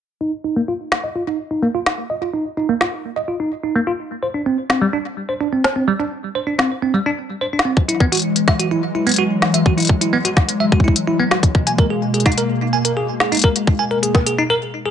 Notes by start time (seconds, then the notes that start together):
0.21 D#4
0.44 D#4
0.56 A#3
0.68 F4
0.92 snare
1.04 D#5
1.15 F4
1.27 D#4
1.51 D#4
1.63 A#3
1.74 F4
1.86 snare
2.10 D#5
2.22 F4
2.33 D#4
2.57 D#4
2.69 A#3
2.81 F4, snare
3.16 D#5
3.28 F4
3.40 D#4
3.63 D#4
3.75 A#3
3.87 F4
4.23 C5
4.34 D4
4.46 C4
4.70 C4, snare
4.82 G3
4.93 D4
5.29 C5
5.41 D4
5.52 C4
5.64 snare
5.76 C4
5.88 G3
6.00 D4
6.35 C5
6.47 D4
6.59 C4, snare
6.82 C4
6.94 G3
7.06 D4
7.41 C5
7.53 D4
7.59 snare
7.65 C4
7.77 E3 F#3 G#3, kick
7.88 E4, closed hi-hat
8.00 B3, kick
8.12 F#4, closed hi-hat
8.15 closed hi-hat
8.17 closed hi-hat
8.19 closed hi-hat
8.22 closed hi-hat
8.36 closed hi-hat
8.48 E5, kick, snare
8.59 F#4, closed hi-hat
8.71 E4
8.95 E4
9.07 B3, closed hi-hat
9.09 closed hi-hat
9.11 closed hi-hat
9.14 closed hi-hat
9.16 F#4, closed hi-hat
9.42 snare
9.54 E5, closed hi-hat
9.66 F#4, kick
9.78 E4, closed hi-hat
9.80 closed hi-hat
9.82 closed hi-hat
9.85 closed hi-hat
9.87 kick, closed hi-hat
10.01 E4, closed hi-hat
10.13 B3
10.25 F#4, closed hi-hat
10.37 kick, snare
10.49 closed hi-hat
10.60 E5
10.72 F#4, kick
10.80 kick
10.84 E4, kick
10.96 closed hi-hat
11.08 E4
11.19 B3
11.31 F#4, snare
11.43 kick, closed hi-hat
11.55 B2 A#3, kick
11.67 G#5, closed hi-hat
11.78 A#4, kick
11.90 G#4
12.14 G#4, closed hi-hat
12.20 closed hi-hat
12.26 D#4, kick, snare, closed hi-hat
12.32 closed hi-hat
12.38 A#4, closed hi-hat
12.73 G#5
12.85 A#4, closed hi-hat
12.97 G#4
13.20 G#4, snare
13.32 D#4, closed hi-hat
13.35 closed hi-hat
13.37 closed hi-hat
13.39 closed hi-hat
13.42 A#4, kick, closed hi-hat
13.56 closed hi-hat
13.67 kick
13.79 G#5
13.91 A#4
14.03 G#4, closed hi-hat
14.15 kick, snare
14.27 G#4, closed hi-hat
14.38 D#4
14.50 A#4
14.85 G#4